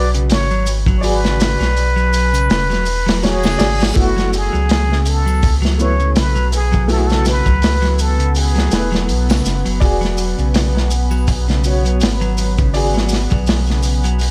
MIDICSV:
0, 0, Header, 1, 8, 480
1, 0, Start_track
1, 0, Tempo, 731707
1, 678, Time_signature, 4, 2, 24, 8
1, 9386, End_track
2, 0, Start_track
2, 0, Title_t, "Muted trumpet"
2, 0, Program_c, 0, 59
2, 0, Note_on_c, 0, 74, 99
2, 69, Note_off_c, 0, 74, 0
2, 209, Note_on_c, 0, 73, 100
2, 493, Note_off_c, 0, 73, 0
2, 642, Note_on_c, 0, 73, 65
2, 686, Note_on_c, 0, 71, 111
2, 696, Note_off_c, 0, 73, 0
2, 2131, Note_on_c, 0, 68, 90
2, 2141, Note_off_c, 0, 71, 0
2, 2617, Note_on_c, 0, 66, 90
2, 2627, Note_off_c, 0, 68, 0
2, 2862, Note_on_c, 0, 68, 89
2, 2872, Note_off_c, 0, 66, 0
2, 3338, Note_on_c, 0, 69, 84
2, 3348, Note_off_c, 0, 68, 0
2, 3639, Note_off_c, 0, 69, 0
2, 3811, Note_on_c, 0, 73, 98
2, 4057, Note_on_c, 0, 71, 91
2, 4067, Note_off_c, 0, 73, 0
2, 4288, Note_off_c, 0, 71, 0
2, 4298, Note_on_c, 0, 68, 89
2, 4512, Note_off_c, 0, 68, 0
2, 4541, Note_on_c, 0, 69, 88
2, 4583, Note_on_c, 0, 68, 82
2, 4593, Note_off_c, 0, 69, 0
2, 4642, Note_on_c, 0, 69, 97
2, 4652, Note_off_c, 0, 68, 0
2, 4768, Note_off_c, 0, 69, 0
2, 4781, Note_on_c, 0, 71, 98
2, 5254, Note_on_c, 0, 69, 83
2, 5264, Note_off_c, 0, 71, 0
2, 5496, Note_on_c, 0, 68, 81
2, 5506, Note_off_c, 0, 69, 0
2, 5967, Note_off_c, 0, 68, 0
2, 9386, End_track
3, 0, Start_track
3, 0, Title_t, "Upright piano"
3, 0, Program_c, 1, 0
3, 0, Control_c, 1, 64, 127
3, 0, Note_on_c, 1, 66, 71
3, 0, Note_on_c, 1, 68, 108
3, 0, Note_on_c, 1, 71, 82
3, 0, Note_on_c, 1, 74, 92
3, 653, Note_off_c, 1, 66, 0
3, 658, Note_off_c, 1, 71, 0
3, 663, Note_off_c, 1, 74, 0
3, 663, Note_on_c, 1, 74, 98
3, 674, Note_on_c, 1, 66, 88
3, 682, Note_off_c, 1, 68, 0
3, 682, Note_on_c, 1, 68, 101
3, 1846, Note_off_c, 1, 74, 0
3, 1851, Note_off_c, 1, 66, 0
3, 1855, Note_off_c, 1, 68, 0
3, 2116, Note_on_c, 1, 66, 77
3, 2122, Note_on_c, 1, 73, 97
3, 2332, Note_off_c, 1, 66, 0
3, 2335, Note_off_c, 1, 73, 0
3, 2349, Note_on_c, 1, 74, 96
3, 2352, Note_on_c, 1, 66, 82
3, 2358, Note_on_c, 1, 68, 104
3, 2569, Note_off_c, 1, 74, 0
3, 2570, Note_off_c, 1, 66, 0
3, 2573, Note_off_c, 1, 68, 0
3, 2585, Note_on_c, 1, 57, 97
3, 2591, Note_on_c, 1, 59, 87
3, 2595, Note_on_c, 1, 64, 90
3, 2604, Note_on_c, 1, 66, 105
3, 2607, Control_c, 1, 64, 0
3, 2719, Control_c, 1, 64, 127
3, 3766, Note_off_c, 1, 57, 0
3, 3769, Note_off_c, 1, 59, 0
3, 3772, Note_off_c, 1, 64, 0
3, 3776, Note_off_c, 1, 66, 0
3, 3790, Note_on_c, 1, 57, 74
3, 3795, Note_on_c, 1, 59, 65
3, 3803, Note_on_c, 1, 64, 70
3, 3808, Note_on_c, 1, 71, 83
3, 4489, Note_off_c, 1, 57, 0
3, 4491, Note_off_c, 1, 59, 0
3, 4496, Note_off_c, 1, 64, 0
3, 4498, Note_off_c, 1, 71, 0
3, 4511, Note_on_c, 1, 57, 93
3, 4514, Note_on_c, 1, 59, 88
3, 4523, Note_on_c, 1, 64, 94
3, 4527, Note_on_c, 1, 66, 109
3, 5690, Note_off_c, 1, 57, 0
3, 5691, Note_off_c, 1, 59, 0
3, 5696, Note_off_c, 1, 64, 0
3, 5698, Note_off_c, 1, 66, 0
3, 5713, Note_on_c, 1, 57, 72
3, 5718, Note_on_c, 1, 59, 70
3, 5724, Note_on_c, 1, 64, 70
3, 5733, Note_on_c, 1, 71, 90
3, 6411, Note_off_c, 1, 57, 0
3, 6413, Note_off_c, 1, 59, 0
3, 6416, Note_off_c, 1, 64, 0
3, 6421, Note_off_c, 1, 71, 0
3, 6431, Note_on_c, 1, 74, 96
3, 6439, Note_on_c, 1, 66, 93
3, 6448, Control_c, 1, 64, 0
3, 6452, Note_on_c, 1, 68, 114
3, 6557, Control_c, 1, 64, 127
3, 7610, Note_off_c, 1, 74, 0
3, 7614, Note_off_c, 1, 66, 0
3, 7620, Note_off_c, 1, 68, 0
3, 7643, Note_on_c, 1, 66, 68
3, 7654, Note_on_c, 1, 73, 79
3, 8335, Note_off_c, 1, 66, 0
3, 8341, Note_off_c, 1, 73, 0
3, 8355, Note_on_c, 1, 74, 94
3, 8364, Note_on_c, 1, 66, 87
3, 8373, Note_on_c, 1, 68, 113
3, 9386, Note_off_c, 1, 66, 0
3, 9386, Note_off_c, 1, 68, 0
3, 9386, Note_off_c, 1, 74, 0
3, 9386, End_track
4, 0, Start_track
4, 0, Title_t, "Ambient pad"
4, 0, Program_c, 2, 92
4, 2598, Note_on_c, 2, 71, 85
4, 2601, Note_on_c, 2, 59, 85
4, 9386, Note_off_c, 2, 59, 0
4, 9386, Note_off_c, 2, 71, 0
4, 9386, End_track
5, 0, Start_track
5, 0, Title_t, "Clean electric guitar"
5, 0, Program_c, 3, 27
5, 0, Note_on_c, 3, 54, 103
5, 79, Note_off_c, 3, 54, 0
5, 92, Note_on_c, 3, 49, 76
5, 319, Note_off_c, 3, 49, 0
5, 334, Note_on_c, 3, 54, 102
5, 433, Note_off_c, 3, 54, 0
5, 574, Note_on_c, 3, 54, 103
5, 800, Note_off_c, 3, 54, 0
5, 810, Note_on_c, 3, 49, 76
5, 1039, Note_off_c, 3, 49, 0
5, 1049, Note_on_c, 3, 54, 102
5, 1150, Note_off_c, 3, 54, 0
5, 1287, Note_on_c, 3, 54, 93
5, 1517, Note_off_c, 3, 54, 0
5, 1527, Note_on_c, 3, 49, 80
5, 1757, Note_off_c, 3, 49, 0
5, 1770, Note_on_c, 3, 54, 100
5, 1871, Note_off_c, 3, 54, 0
5, 2010, Note_on_c, 3, 54, 104
5, 2238, Note_off_c, 3, 54, 0
5, 2252, Note_on_c, 3, 49, 79
5, 2479, Note_off_c, 3, 49, 0
5, 2489, Note_on_c, 3, 54, 101
5, 2591, Note_off_c, 3, 54, 0
5, 2732, Note_on_c, 3, 54, 96
5, 2832, Note_off_c, 3, 54, 0
5, 2971, Note_on_c, 3, 54, 106
5, 3199, Note_off_c, 3, 54, 0
5, 3208, Note_on_c, 3, 49, 70
5, 3437, Note_off_c, 3, 49, 0
5, 3451, Note_on_c, 3, 54, 102
5, 3552, Note_off_c, 3, 54, 0
5, 3687, Note_on_c, 3, 54, 101
5, 3917, Note_off_c, 3, 54, 0
5, 3930, Note_on_c, 3, 49, 73
5, 4158, Note_off_c, 3, 49, 0
5, 4168, Note_on_c, 3, 54, 102
5, 4270, Note_off_c, 3, 54, 0
5, 4408, Note_on_c, 3, 54, 99
5, 4637, Note_off_c, 3, 54, 0
5, 4649, Note_on_c, 3, 49, 71
5, 4878, Note_off_c, 3, 49, 0
5, 4889, Note_on_c, 3, 54, 107
5, 4991, Note_off_c, 3, 54, 0
5, 5130, Note_on_c, 3, 54, 100
5, 5358, Note_off_c, 3, 54, 0
5, 5368, Note_on_c, 3, 49, 81
5, 5597, Note_off_c, 3, 49, 0
5, 5608, Note_on_c, 3, 54, 101
5, 5710, Note_off_c, 3, 54, 0
5, 5849, Note_on_c, 3, 54, 99
5, 6078, Note_off_c, 3, 54, 0
5, 6091, Note_on_c, 3, 49, 74
5, 6319, Note_off_c, 3, 49, 0
5, 6332, Note_on_c, 3, 54, 101
5, 6432, Note_off_c, 3, 54, 0
5, 6567, Note_on_c, 3, 54, 99
5, 6797, Note_off_c, 3, 54, 0
5, 6809, Note_on_c, 3, 49, 81
5, 7038, Note_off_c, 3, 49, 0
5, 7049, Note_on_c, 3, 54, 96
5, 7150, Note_off_c, 3, 54, 0
5, 7289, Note_on_c, 3, 54, 107
5, 7518, Note_off_c, 3, 54, 0
5, 7531, Note_on_c, 3, 49, 84
5, 7759, Note_off_c, 3, 49, 0
5, 7773, Note_on_c, 3, 54, 104
5, 7873, Note_off_c, 3, 54, 0
5, 8012, Note_on_c, 3, 54, 102
5, 8239, Note_off_c, 3, 54, 0
5, 8252, Note_on_c, 3, 49, 81
5, 8480, Note_off_c, 3, 49, 0
5, 8491, Note_on_c, 3, 54, 97
5, 8592, Note_off_c, 3, 54, 0
5, 8731, Note_on_c, 3, 54, 112
5, 8959, Note_off_c, 3, 54, 0
5, 8972, Note_on_c, 3, 49, 69
5, 9199, Note_off_c, 3, 49, 0
5, 9212, Note_on_c, 3, 54, 104
5, 9312, Note_off_c, 3, 54, 0
5, 9386, End_track
6, 0, Start_track
6, 0, Title_t, "Sub bass"
6, 0, Program_c, 4, 38
6, 0, Note_on_c, 4, 35, 97
6, 199, Note_on_c, 4, 32, 88
6, 209, Note_off_c, 4, 35, 0
6, 1028, Note_off_c, 4, 32, 0
6, 1052, Note_on_c, 4, 35, 93
6, 1636, Note_off_c, 4, 35, 0
6, 1640, Note_on_c, 4, 28, 100
6, 2339, Note_off_c, 4, 28, 0
6, 2357, Note_on_c, 4, 32, 104
6, 2573, Note_off_c, 4, 32, 0
6, 2601, Note_on_c, 4, 30, 92
6, 2949, Note_off_c, 4, 30, 0
6, 2979, Note_on_c, 4, 37, 89
6, 4043, Note_on_c, 4, 35, 89
6, 4053, Note_off_c, 4, 37, 0
6, 4871, Note_off_c, 4, 35, 0
6, 4894, Note_on_c, 4, 37, 92
6, 5698, Note_off_c, 4, 37, 0
6, 5721, Note_on_c, 4, 28, 90
6, 5964, Note_on_c, 4, 35, 107
6, 5973, Note_off_c, 4, 28, 0
6, 6176, Note_off_c, 4, 35, 0
6, 6203, Note_on_c, 4, 30, 94
6, 6320, Note_off_c, 4, 30, 0
6, 6340, Note_on_c, 4, 30, 88
6, 6429, Note_off_c, 4, 30, 0
6, 6441, Note_on_c, 4, 28, 95
6, 6789, Note_off_c, 4, 28, 0
6, 6815, Note_on_c, 4, 35, 99
6, 7880, Note_on_c, 4, 32, 82
6, 7890, Note_off_c, 4, 35, 0
6, 8709, Note_off_c, 4, 32, 0
6, 8738, Note_on_c, 4, 35, 92
6, 9386, Note_off_c, 4, 35, 0
6, 9386, End_track
7, 0, Start_track
7, 0, Title_t, "Reverse cymbal"
7, 0, Program_c, 5, 119
7, 1640, Note_on_c, 5, 60, 63
7, 2599, Note_off_c, 5, 60, 0
7, 9386, End_track
8, 0, Start_track
8, 0, Title_t, "Drums"
8, 92, Note_on_c, 9, 82, 39
8, 95, Note_on_c, 9, 42, 43
8, 157, Note_off_c, 9, 82, 0
8, 161, Note_off_c, 9, 42, 0
8, 194, Note_on_c, 9, 46, 89
8, 197, Note_on_c, 9, 82, 51
8, 210, Note_on_c, 9, 38, 107
8, 260, Note_off_c, 9, 46, 0
8, 262, Note_off_c, 9, 82, 0
8, 276, Note_off_c, 9, 38, 0
8, 334, Note_on_c, 9, 82, 34
8, 399, Note_off_c, 9, 82, 0
8, 436, Note_on_c, 9, 82, 98
8, 441, Note_on_c, 9, 46, 65
8, 501, Note_off_c, 9, 82, 0
8, 507, Note_off_c, 9, 46, 0
8, 567, Note_on_c, 9, 36, 91
8, 573, Note_on_c, 9, 82, 37
8, 633, Note_off_c, 9, 36, 0
8, 639, Note_off_c, 9, 82, 0
8, 674, Note_on_c, 9, 82, 46
8, 682, Note_on_c, 9, 46, 91
8, 740, Note_off_c, 9, 82, 0
8, 747, Note_off_c, 9, 46, 0
8, 814, Note_on_c, 9, 82, 40
8, 819, Note_on_c, 9, 38, 53
8, 879, Note_off_c, 9, 82, 0
8, 885, Note_off_c, 9, 38, 0
8, 918, Note_on_c, 9, 46, 80
8, 919, Note_on_c, 9, 82, 88
8, 930, Note_on_c, 9, 38, 114
8, 984, Note_off_c, 9, 46, 0
8, 985, Note_off_c, 9, 82, 0
8, 995, Note_off_c, 9, 38, 0
8, 1054, Note_on_c, 9, 82, 40
8, 1065, Note_on_c, 9, 38, 42
8, 1119, Note_off_c, 9, 82, 0
8, 1131, Note_off_c, 9, 38, 0
8, 1159, Note_on_c, 9, 82, 52
8, 1160, Note_on_c, 9, 46, 59
8, 1225, Note_off_c, 9, 82, 0
8, 1226, Note_off_c, 9, 46, 0
8, 1295, Note_on_c, 9, 82, 36
8, 1360, Note_off_c, 9, 82, 0
8, 1398, Note_on_c, 9, 82, 98
8, 1403, Note_on_c, 9, 46, 75
8, 1464, Note_off_c, 9, 82, 0
8, 1469, Note_off_c, 9, 46, 0
8, 1535, Note_on_c, 9, 81, 58
8, 1535, Note_on_c, 9, 82, 38
8, 1539, Note_on_c, 9, 42, 46
8, 1600, Note_off_c, 9, 82, 0
8, 1601, Note_off_c, 9, 81, 0
8, 1605, Note_off_c, 9, 42, 0
8, 1639, Note_on_c, 9, 82, 54
8, 1644, Note_on_c, 9, 46, 80
8, 1646, Note_on_c, 9, 38, 109
8, 1705, Note_off_c, 9, 82, 0
8, 1710, Note_off_c, 9, 46, 0
8, 1712, Note_off_c, 9, 38, 0
8, 1778, Note_on_c, 9, 82, 37
8, 1790, Note_on_c, 9, 38, 38
8, 1844, Note_off_c, 9, 82, 0
8, 1856, Note_off_c, 9, 38, 0
8, 1874, Note_on_c, 9, 82, 85
8, 1881, Note_on_c, 9, 46, 67
8, 1940, Note_off_c, 9, 82, 0
8, 1947, Note_off_c, 9, 46, 0
8, 2019, Note_on_c, 9, 82, 34
8, 2023, Note_on_c, 9, 46, 83
8, 2027, Note_on_c, 9, 38, 94
8, 2084, Note_off_c, 9, 82, 0
8, 2089, Note_off_c, 9, 46, 0
8, 2093, Note_off_c, 9, 38, 0
8, 2119, Note_on_c, 9, 46, 76
8, 2119, Note_on_c, 9, 82, 49
8, 2130, Note_on_c, 9, 38, 98
8, 2185, Note_off_c, 9, 46, 0
8, 2185, Note_off_c, 9, 82, 0
8, 2195, Note_off_c, 9, 38, 0
8, 2248, Note_on_c, 9, 82, 33
8, 2252, Note_on_c, 9, 81, 62
8, 2255, Note_on_c, 9, 46, 80
8, 2265, Note_on_c, 9, 38, 100
8, 2314, Note_off_c, 9, 82, 0
8, 2318, Note_off_c, 9, 81, 0
8, 2320, Note_off_c, 9, 46, 0
8, 2331, Note_off_c, 9, 38, 0
8, 2357, Note_on_c, 9, 82, 89
8, 2358, Note_on_c, 9, 46, 74
8, 2368, Note_on_c, 9, 38, 104
8, 2423, Note_off_c, 9, 46, 0
8, 2423, Note_off_c, 9, 82, 0
8, 2433, Note_off_c, 9, 38, 0
8, 2492, Note_on_c, 9, 82, 37
8, 2502, Note_on_c, 9, 46, 76
8, 2511, Note_on_c, 9, 38, 114
8, 2558, Note_off_c, 9, 82, 0
8, 2567, Note_off_c, 9, 46, 0
8, 2576, Note_off_c, 9, 38, 0
8, 2599, Note_on_c, 9, 36, 109
8, 2602, Note_on_c, 9, 46, 81
8, 2604, Note_on_c, 9, 82, 49
8, 2665, Note_off_c, 9, 36, 0
8, 2668, Note_off_c, 9, 46, 0
8, 2669, Note_off_c, 9, 82, 0
8, 2741, Note_on_c, 9, 82, 41
8, 2746, Note_on_c, 9, 38, 46
8, 2806, Note_off_c, 9, 82, 0
8, 2812, Note_off_c, 9, 38, 0
8, 2842, Note_on_c, 9, 82, 89
8, 2845, Note_on_c, 9, 46, 70
8, 2908, Note_off_c, 9, 82, 0
8, 2911, Note_off_c, 9, 46, 0
8, 2981, Note_on_c, 9, 82, 36
8, 3047, Note_off_c, 9, 82, 0
8, 3078, Note_on_c, 9, 46, 86
8, 3081, Note_on_c, 9, 82, 50
8, 3092, Note_on_c, 9, 38, 124
8, 3143, Note_off_c, 9, 46, 0
8, 3147, Note_off_c, 9, 82, 0
8, 3158, Note_off_c, 9, 38, 0
8, 3230, Note_on_c, 9, 38, 45
8, 3295, Note_off_c, 9, 38, 0
8, 3316, Note_on_c, 9, 46, 70
8, 3318, Note_on_c, 9, 82, 95
8, 3382, Note_off_c, 9, 46, 0
8, 3383, Note_off_c, 9, 82, 0
8, 3458, Note_on_c, 9, 82, 43
8, 3461, Note_on_c, 9, 81, 60
8, 3523, Note_off_c, 9, 82, 0
8, 3526, Note_off_c, 9, 81, 0
8, 3559, Note_on_c, 9, 82, 51
8, 3562, Note_on_c, 9, 36, 109
8, 3564, Note_on_c, 9, 46, 84
8, 3625, Note_off_c, 9, 82, 0
8, 3628, Note_off_c, 9, 36, 0
8, 3630, Note_off_c, 9, 46, 0
8, 3692, Note_on_c, 9, 82, 35
8, 3706, Note_on_c, 9, 38, 51
8, 3758, Note_off_c, 9, 82, 0
8, 3772, Note_off_c, 9, 38, 0
8, 3802, Note_on_c, 9, 82, 79
8, 3867, Note_off_c, 9, 82, 0
8, 3934, Note_on_c, 9, 82, 33
8, 4000, Note_off_c, 9, 82, 0
8, 4039, Note_on_c, 9, 46, 89
8, 4039, Note_on_c, 9, 82, 55
8, 4045, Note_on_c, 9, 38, 106
8, 4104, Note_off_c, 9, 46, 0
8, 4105, Note_off_c, 9, 82, 0
8, 4111, Note_off_c, 9, 38, 0
8, 4172, Note_on_c, 9, 82, 39
8, 4238, Note_off_c, 9, 82, 0
8, 4278, Note_on_c, 9, 46, 69
8, 4282, Note_on_c, 9, 82, 90
8, 4344, Note_off_c, 9, 46, 0
8, 4347, Note_off_c, 9, 82, 0
8, 4413, Note_on_c, 9, 82, 38
8, 4421, Note_on_c, 9, 36, 97
8, 4479, Note_off_c, 9, 82, 0
8, 4486, Note_off_c, 9, 36, 0
8, 4517, Note_on_c, 9, 82, 49
8, 4523, Note_on_c, 9, 46, 78
8, 4583, Note_off_c, 9, 82, 0
8, 4589, Note_off_c, 9, 46, 0
8, 4654, Note_on_c, 9, 82, 42
8, 4668, Note_on_c, 9, 38, 56
8, 4720, Note_off_c, 9, 82, 0
8, 4734, Note_off_c, 9, 38, 0
8, 4758, Note_on_c, 9, 82, 100
8, 4760, Note_on_c, 9, 46, 78
8, 4766, Note_on_c, 9, 38, 49
8, 4823, Note_off_c, 9, 82, 0
8, 4826, Note_off_c, 9, 46, 0
8, 4832, Note_off_c, 9, 38, 0
8, 4893, Note_on_c, 9, 36, 76
8, 4895, Note_on_c, 9, 82, 40
8, 4959, Note_off_c, 9, 36, 0
8, 4961, Note_off_c, 9, 82, 0
8, 4999, Note_on_c, 9, 46, 81
8, 5005, Note_on_c, 9, 82, 59
8, 5013, Note_on_c, 9, 38, 116
8, 5064, Note_off_c, 9, 46, 0
8, 5070, Note_off_c, 9, 82, 0
8, 5078, Note_off_c, 9, 38, 0
8, 5131, Note_on_c, 9, 82, 42
8, 5145, Note_on_c, 9, 38, 35
8, 5197, Note_off_c, 9, 82, 0
8, 5211, Note_off_c, 9, 38, 0
8, 5239, Note_on_c, 9, 82, 91
8, 5240, Note_on_c, 9, 46, 61
8, 5305, Note_off_c, 9, 82, 0
8, 5306, Note_off_c, 9, 46, 0
8, 5374, Note_on_c, 9, 82, 38
8, 5379, Note_on_c, 9, 42, 46
8, 5439, Note_off_c, 9, 82, 0
8, 5444, Note_off_c, 9, 42, 0
8, 5476, Note_on_c, 9, 82, 50
8, 5486, Note_on_c, 9, 46, 85
8, 5541, Note_off_c, 9, 82, 0
8, 5551, Note_off_c, 9, 46, 0
8, 5611, Note_on_c, 9, 82, 39
8, 5629, Note_on_c, 9, 38, 50
8, 5676, Note_off_c, 9, 82, 0
8, 5695, Note_off_c, 9, 38, 0
8, 5715, Note_on_c, 9, 82, 90
8, 5717, Note_on_c, 9, 46, 80
8, 5727, Note_on_c, 9, 38, 94
8, 5781, Note_off_c, 9, 82, 0
8, 5783, Note_off_c, 9, 46, 0
8, 5793, Note_off_c, 9, 38, 0
8, 5853, Note_on_c, 9, 82, 35
8, 5869, Note_on_c, 9, 38, 55
8, 5919, Note_off_c, 9, 82, 0
8, 5934, Note_off_c, 9, 38, 0
8, 5961, Note_on_c, 9, 46, 68
8, 5963, Note_on_c, 9, 82, 55
8, 6027, Note_off_c, 9, 46, 0
8, 6029, Note_off_c, 9, 82, 0
8, 6095, Note_on_c, 9, 82, 42
8, 6098, Note_on_c, 9, 46, 88
8, 6101, Note_on_c, 9, 81, 65
8, 6107, Note_on_c, 9, 38, 101
8, 6161, Note_off_c, 9, 82, 0
8, 6164, Note_off_c, 9, 46, 0
8, 6167, Note_off_c, 9, 81, 0
8, 6173, Note_off_c, 9, 38, 0
8, 6202, Note_on_c, 9, 82, 105
8, 6210, Note_on_c, 9, 38, 47
8, 6267, Note_off_c, 9, 82, 0
8, 6275, Note_off_c, 9, 38, 0
8, 6335, Note_on_c, 9, 46, 62
8, 6336, Note_on_c, 9, 82, 43
8, 6401, Note_off_c, 9, 46, 0
8, 6402, Note_off_c, 9, 82, 0
8, 6439, Note_on_c, 9, 36, 108
8, 6440, Note_on_c, 9, 82, 52
8, 6442, Note_on_c, 9, 46, 80
8, 6504, Note_off_c, 9, 36, 0
8, 6505, Note_off_c, 9, 82, 0
8, 6508, Note_off_c, 9, 46, 0
8, 6573, Note_on_c, 9, 82, 40
8, 6590, Note_on_c, 9, 38, 41
8, 6639, Note_off_c, 9, 82, 0
8, 6655, Note_off_c, 9, 38, 0
8, 6675, Note_on_c, 9, 82, 104
8, 6682, Note_on_c, 9, 46, 67
8, 6741, Note_off_c, 9, 82, 0
8, 6748, Note_off_c, 9, 46, 0
8, 6813, Note_on_c, 9, 82, 40
8, 6879, Note_off_c, 9, 82, 0
8, 6916, Note_on_c, 9, 46, 88
8, 6918, Note_on_c, 9, 82, 59
8, 6925, Note_on_c, 9, 38, 106
8, 6982, Note_off_c, 9, 46, 0
8, 6984, Note_off_c, 9, 82, 0
8, 6991, Note_off_c, 9, 38, 0
8, 7067, Note_on_c, 9, 38, 48
8, 7132, Note_off_c, 9, 38, 0
8, 7154, Note_on_c, 9, 82, 110
8, 7161, Note_on_c, 9, 46, 59
8, 7220, Note_off_c, 9, 82, 0
8, 7227, Note_off_c, 9, 46, 0
8, 7287, Note_on_c, 9, 82, 39
8, 7289, Note_on_c, 9, 81, 53
8, 7352, Note_off_c, 9, 82, 0
8, 7354, Note_off_c, 9, 81, 0
8, 7395, Note_on_c, 9, 82, 58
8, 7399, Note_on_c, 9, 36, 100
8, 7400, Note_on_c, 9, 46, 88
8, 7460, Note_off_c, 9, 82, 0
8, 7465, Note_off_c, 9, 36, 0
8, 7465, Note_off_c, 9, 46, 0
8, 7534, Note_on_c, 9, 82, 35
8, 7543, Note_on_c, 9, 38, 47
8, 7600, Note_off_c, 9, 82, 0
8, 7608, Note_off_c, 9, 38, 0
8, 7635, Note_on_c, 9, 82, 88
8, 7639, Note_on_c, 9, 46, 62
8, 7701, Note_off_c, 9, 82, 0
8, 7704, Note_off_c, 9, 46, 0
8, 7774, Note_on_c, 9, 82, 36
8, 7778, Note_on_c, 9, 42, 48
8, 7840, Note_off_c, 9, 82, 0
8, 7843, Note_off_c, 9, 42, 0
8, 7874, Note_on_c, 9, 82, 53
8, 7881, Note_on_c, 9, 46, 94
8, 7894, Note_on_c, 9, 38, 121
8, 7939, Note_off_c, 9, 82, 0
8, 7947, Note_off_c, 9, 46, 0
8, 7960, Note_off_c, 9, 38, 0
8, 8014, Note_on_c, 9, 82, 37
8, 8079, Note_off_c, 9, 82, 0
8, 8118, Note_on_c, 9, 82, 102
8, 8123, Note_on_c, 9, 46, 59
8, 8184, Note_off_c, 9, 82, 0
8, 8189, Note_off_c, 9, 46, 0
8, 8251, Note_on_c, 9, 82, 44
8, 8256, Note_on_c, 9, 36, 95
8, 8316, Note_off_c, 9, 82, 0
8, 8322, Note_off_c, 9, 36, 0
8, 8357, Note_on_c, 9, 82, 52
8, 8359, Note_on_c, 9, 46, 89
8, 8422, Note_off_c, 9, 82, 0
8, 8425, Note_off_c, 9, 46, 0
8, 8487, Note_on_c, 9, 82, 38
8, 8512, Note_on_c, 9, 38, 51
8, 8553, Note_off_c, 9, 82, 0
8, 8577, Note_off_c, 9, 38, 0
8, 8586, Note_on_c, 9, 82, 107
8, 8603, Note_on_c, 9, 46, 65
8, 8613, Note_on_c, 9, 38, 50
8, 8652, Note_off_c, 9, 82, 0
8, 8668, Note_off_c, 9, 46, 0
8, 8678, Note_off_c, 9, 38, 0
8, 8728, Note_on_c, 9, 82, 37
8, 8737, Note_on_c, 9, 36, 95
8, 8793, Note_off_c, 9, 82, 0
8, 8803, Note_off_c, 9, 36, 0
8, 8834, Note_on_c, 9, 82, 57
8, 8838, Note_on_c, 9, 46, 81
8, 8850, Note_on_c, 9, 38, 105
8, 8899, Note_off_c, 9, 82, 0
8, 8904, Note_off_c, 9, 46, 0
8, 8915, Note_off_c, 9, 38, 0
8, 8967, Note_on_c, 9, 82, 38
8, 8987, Note_on_c, 9, 38, 39
8, 9032, Note_off_c, 9, 82, 0
8, 9052, Note_off_c, 9, 38, 0
8, 9071, Note_on_c, 9, 82, 90
8, 9085, Note_on_c, 9, 46, 67
8, 9137, Note_off_c, 9, 82, 0
8, 9151, Note_off_c, 9, 46, 0
8, 9207, Note_on_c, 9, 82, 42
8, 9218, Note_on_c, 9, 42, 45
8, 9272, Note_off_c, 9, 82, 0
8, 9283, Note_off_c, 9, 42, 0
8, 9309, Note_on_c, 9, 82, 48
8, 9323, Note_on_c, 9, 46, 85
8, 9375, Note_off_c, 9, 82, 0
8, 9386, Note_off_c, 9, 46, 0
8, 9386, End_track
0, 0, End_of_file